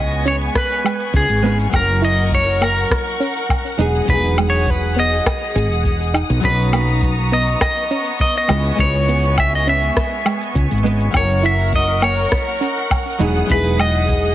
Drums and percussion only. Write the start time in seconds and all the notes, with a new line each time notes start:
0.26 closed hi-hat, shaker
0.42 closed hi-hat, shaker
0.55 kick, cross-stick, closed hi-hat, shaker
0.86 closed hi-hat, low woodblock, shaker
1.00 closed hi-hat, shaker
1.14 kick, closed hi-hat, shaker
1.30 closed hi-hat, shaker
1.37 closed hi-hat
1.44 shaker
1.60 closed hi-hat, shaker
1.73 kick, closed hi-hat, low woodblock, shaker
1.90 shaker
2.04 shaker
2.19 closed hi-hat, shaker
2.31 kick, closed hi-hat, shaker
2.62 closed hi-hat, low woodblock, shaker
2.77 closed hi-hat, shaker
2.90 kick, cross-stick, closed hi-hat, shaker
3.21 closed hi-hat, shaker
3.37 closed hi-hat, shaker
3.49 kick, closed hi-hat, low woodblock, shaker
3.66 closed hi-hat, shaker
3.72 closed hi-hat
3.80 shaker
3.95 closed hi-hat, shaker
4.08 kick, closed hi-hat, shaker
4.25 shaker
4.38 closed hi-hat, low woodblock, shaker
4.54 closed hi-hat, shaker
4.67 kick, closed hi-hat, shaker
4.97 closed hi-hat, shaker
5.13 closed hi-hat, shaker
5.26 kick, cross-stick, closed hi-hat, low woodblock, shaker
5.57 closed hi-hat, shaker
5.72 closed hi-hat, shaker
5.84 kick, closed hi-hat, shaker
6.01 closed hi-hat, shaker
6.08 closed hi-hat
6.14 low woodblock, shaker
6.30 closed hi-hat, shaker
6.43 kick, closed hi-hat, shaker
6.60 shaker
6.73 low woodblock, shaker
6.88 closed hi-hat, shaker
7.02 kick, closed hi-hat, shaker
7.32 closed hi-hat, shaker
7.47 closed hi-hat, shaker
7.61 kick, cross-stick, closed hi-hat, low woodblock, shaker
7.90 closed hi-hat, shaker
8.06 closed hi-hat, shaker
8.19 kick, closed hi-hat, shaker
8.35 closed hi-hat, shaker
8.42 closed hi-hat
8.49 low woodblock, shaker
8.65 closed hi-hat, shaker
8.79 kick, closed hi-hat, shaker
8.95 shaker
9.09 shaker
9.24 closed hi-hat, shaker
9.37 kick, closed hi-hat, low woodblock, shaker
9.67 closed hi-hat, shaker
9.83 closed hi-hat, shaker
9.96 kick, cross-stick, closed hi-hat, shaker
10.26 closed hi-hat, low woodblock, shaker
10.42 closed hi-hat, shaker
10.55 kick, closed hi-hat, shaker
10.71 closed hi-hat, shaker
10.78 closed hi-hat
10.86 shaker
11.01 closed hi-hat, shaker
11.14 kick, closed hi-hat, low woodblock, shaker
11.30 shaker
11.44 shaker
11.60 closed hi-hat, shaker
11.73 kick, closed hi-hat, shaker
12.02 closed hi-hat, low woodblock, shaker
12.18 closed hi-hat, shaker
12.32 kick, cross-stick, closed hi-hat, shaker
12.62 closed hi-hat, shaker
12.77 closed hi-hat, shaker
12.91 kick, closed hi-hat, low woodblock, shaker
13.06 closed hi-hat, shaker
13.13 closed hi-hat
13.20 shaker
13.36 closed hi-hat, shaker
13.49 kick, closed hi-hat, shaker
13.66 shaker
13.79 closed hi-hat, low woodblock, shaker
13.95 closed hi-hat, shaker
14.08 kick, closed hi-hat, shaker
14.25 shaker